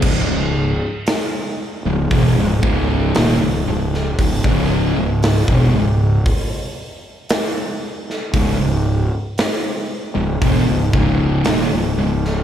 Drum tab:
CC |x---------------|----------------|----------------|
HH |----o---o---o---|o---o---o---o---|o---o---o---o---|
SD |----o-------o--o|----o-------o--o|----o-------o--o|
BD |o-------o-o-----|oo---o--o-------|o-------o-o-----|